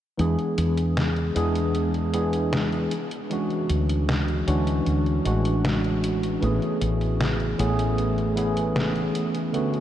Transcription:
0.17 0.35 E2 medium
0.17 1.31 E3 medium
0.17 1.31 G#3 medium
0.17 1.31 B3 medium
0.17 1.32 D4 medium
0.17 1.32 G#4 loud
0.17 closed hi-hat soft
0.39 closed hi-hat soft
0.58 1.30 E2 medium
0.58 closed hi-hat medium
0.77 closed hi-hat medium
0.97 snare loud
0.97 closed hi-hat medium
1.16 closed hi-hat soft
1.35 2.86 E2 loud
1.35 2.09 E3 medium
1.35 2.09 G#3 medium
1.35 2.09 B3 medium
1.35 2.09 D4 medium
1.35 2.10 G#4 loud
1.35 closed hi-hat medium
1.55 closed hi-hat medium
1.75 closed hi-hat medium
1.94 closed hi-hat soft
2.13 2.89 E3 medium
2.13 2.89 G#3 medium
2.13 2.89 B3 medium
2.13 2.90 D4 medium
2.13 2.90 G#4 medium
2.13 closed hi-hat medium
2.33 closed hi-hat soft
2.53 snare loud
2.53 closed hi-hat medium
2.72 closed hi-hat soft
2.91 closed hi-hat medium
3.11 closed hi-hat soft
3.30 4.43 E3 medium
3.30 4.43 G#3 medium
3.30 4.43 C#4 medium
3.30 4.44 D4 medium
3.30 4.44 F#4 loud
3.30 closed hi-hat medium
3.50 closed hi-hat soft
3.70 4.42 D2 medium
3.70 closed hi-hat loud
3.89 closed hi-hat medium
4.09 snare loud
4.09 closed hi-hat medium
4.28 closed hi-hat soft
4.47 4.80 D2 loud
4.47 5.21 E3 medium
4.47 5.21 G#3 medium
4.47 5.21 C#4 medium
4.47 5.21 D4 medium
4.47 5.21 F#4 loud
4.47 closed hi-hat medium
4.67 closed hi-hat medium
4.86 5.19 D2 medium
4.86 closed hi-hat medium
5.06 closed hi-hat soft
5.24 6.37 A1 loud
5.24 6.37 E3 medium
5.24 6.38 G#3 medium
5.24 6.38 C#4 medium
5.24 6.38 D4 medium
5.24 6.39 F#4 medium
5.24 closed hi-hat medium
5.45 closed hi-hat soft
5.65 snare loud
5.65 closed hi-hat medium
5.84 closed hi-hat soft
6.04 closed hi-hat medium
6.23 closed hi-hat medium
6.41 6.59 A1 medium
6.41 7.54 E3 medium
6.41 7.54 A3 medium
6.41 7.55 B3 medium
6.41 7.55 C#4 medium
6.41 7.55 G#4 loud
6.41 closed hi-hat soft
6.62 closed hi-hat soft
6.82 7.54 A1 medium
6.82 closed hi-hat medium
7.01 closed hi-hat medium
7.21 snare loud
7.21 closed hi-hat medium
7.40 closed hi-hat soft
7.59 9.10 A1 loud
7.59 8.32 E3 medium
7.59 8.33 A3 medium
7.59 8.33 B3 medium
7.59 8.33 C#4 medium
7.59 8.33 G#4 loud
7.59 closed hi-hat medium
7.79 closed hi-hat medium
7.98 closed hi-hat soft
8.18 closed hi-hat soft
8.35 9.49 E3 medium
8.35 9.49 A3 medium
8.35 9.49 B3 medium
8.35 9.50 C#4 medium
8.35 9.50 G#4 medium
8.35 closed hi-hat medium
8.57 closed hi-hat soft
8.76 snare loud
8.76 closed hi-hat medium
8.96 closed hi-hat soft
9.15 closed hi-hat medium
9.35 closed hi-hat soft
9.53 9.80 D3 medium
9.53 9.80 A3 medium
9.53 9.80 B3 medium
9.53 9.80 C#4 medium
9.53 9.80 F#4 loud
9.53 closed hi-hat soft
9.74 closed hi-hat soft

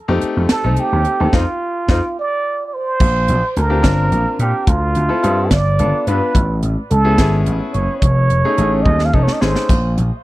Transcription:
0.08 0.20 F2 medium
0.08 0.59 A3 medium
0.08 0.59 C4 medium
0.08 0.59 D#4 medium
0.08 0.59 G4 medium
0.22 muted slap bass stroke soft
0.22 closed hi-hat medium
0.37 0.48 F2 medium
0.49 0.81 A4 medium
0.49 muted slap bass stroke soft
0.49 snare loud
0.49 closed hi-hat medium
0.64 0.76 C2 medium
0.64 1.15 A3 medium
0.64 1.15 C4 medium
0.64 1.15 D#4 medium
0.64 1.15 A4 medium
0.76 1.34 G4 loud
0.76 closed hi-hat medium
0.93 1.04 D#2 medium
1.05 closed hi-hat medium
1.20 1.32 D#2 medium
1.20 1.34 A3 medium
1.20 1.32 C4 medium
1.20 1.32 D#4 medium
1.20 1.34 A4 medium
1.33 1.43 F2 medium
1.33 1.42 C4 medium
1.33 1.42 D#4 medium
1.33 1.42 F4 medium
1.33 2.14 F4 medium
1.33 kick medium
1.33 snare medium
1.88 1.99 F2 medium
1.88 1.98 C4 medium
1.88 1.98 D#4 medium
1.88 1.98 F4 medium
1.88 kick medium
1.88 snare medium
2.19 2.66 D5 medium
2.66 2.75 D5 medium
2.74 3.59 C5 medium
3.00 3.25 A#1 medium
3.00 kick loud
3.00 crash medium
3.28 3.41 A#1 medium
3.28 closed hi-hat medium
3.57 3.81 D2 medium
3.57 4.40 A#4 medium
3.57 closed hi-hat medium
3.70 3.81 C4 medium
3.70 3.82 D4 medium
3.70 3.82 F4 medium
3.70 3.83 G4 medium
3.83 4.08 G1 medium
3.83 4.67 C4 medium
3.83 4.67 D4 medium
3.83 4.67 F4 medium
3.83 4.67 A#4 medium
3.83 kick medium
3.83 snare loud
3.83 closed hi-hat medium
4.12 4.24 A#1 medium
4.12 closed hi-hat medium
4.39 4.52 A#2 medium
4.39 4.70 G4 medium
4.39 closed hi-hat medium
4.67 4.92 D2 medium
4.67 5.53 F4 loud
4.67 kick loud
4.67 closed hi-hat medium
4.95 5.08 D2 medium
4.95 closed hi-hat medium
5.09 5.22 C4 medium
5.09 5.21 E4 medium
5.09 5.21 F4 medium
5.09 5.21 A4 medium
5.23 5.48 G2 medium
5.23 5.51 C4 medium
5.23 5.51 E4 medium
5.23 5.51 F4 medium
5.23 5.51 A4 medium
5.23 closed hi-hat medium
5.51 5.76 G1 medium
5.51 6.09 D5 loud
5.51 kick medium
5.51 snare loud
5.51 closed hi-hat medium
5.79 5.91 G1 medium
5.79 6.05 B3 medium
5.79 6.05 D4 medium
5.79 6.05 F4 medium
5.79 6.05 A4 medium
5.79 closed hi-hat medium
6.07 6.19 G2 medium
6.07 6.35 B3 medium
6.07 6.35 D4 medium
6.07 6.35 F4 medium
6.07 6.35 B4 medium
6.07 6.64 B4 medium
6.07 closed hi-hat medium
6.35 6.59 A1 loud
6.35 kick medium
6.35 closed hi-hat medium
6.63 6.75 A1 medium
6.63 closed hi-hat medium
6.91 7.15 C#2 medium
6.91 7.43 A4 loud
6.91 closed hi-hat medium
7.04 7.17 B3 medium
7.04 7.17 C#4 medium
7.04 7.17 E4 medium
7.04 7.17 G#4 medium
7.18 7.43 G#1 medium
7.18 8.02 B3 medium
7.18 8.02 C#4 medium
7.18 8.02 E4 medium
7.18 8.02 G#4 medium
7.18 kick medium
7.18 snare loud
7.18 closed hi-hat medium
7.46 7.59 A1 medium
7.46 closed hi-hat medium
7.73 7.87 F#1 medium
7.73 7.99 C#5 medium
7.73 closed hi-hat medium
7.99 8.27 F1 loud
7.99 8.84 C#5 loud
7.99 kick loud
7.99 closed hi-hat medium
8.30 8.42 F1 medium
8.30 closed hi-hat medium
8.45 8.57 A3 medium
8.45 8.57 C#4 medium
8.45 8.57 D#4 medium
8.45 8.56 G#4 medium
8.58 8.82 A1 medium
8.58 9.09 A3 medium
8.58 9.09 C#4 medium
8.58 9.09 D#4 medium
8.58 9.09 G#4 medium
8.58 closed hi-hat medium
8.82 9.10 D#2 medium
8.82 9.07 D#5 loud
8.82 kick medium
8.82 high tom medium
8.99 snare medium
9.05 9.16 F5 medium
9.13 9.26 F1 medium
9.13 9.39 A3 medium
9.13 9.39 C#4 medium
9.13 9.39 D#4 medium
9.13 9.39 A4 medium
9.13 9.25 D#5 medium
9.13 kick medium
9.23 9.34 C#5 medium
9.28 snare medium
9.33 9.43 D#5 medium
9.41 9.54 G#1 medium
9.41 9.69 A3 medium
9.41 9.69 C#4 medium
9.41 9.69 D#4 medium
9.41 9.69 G#4 medium
9.41 9.97 C5 medium
9.41 snare medium
9.55 snare medium
9.69 9.94 A#1 loud
9.69 kick loud
9.69 closed hi-hat medium
9.69 splash medium
9.98 10.10 A#1 medium
9.98 closed hi-hat medium

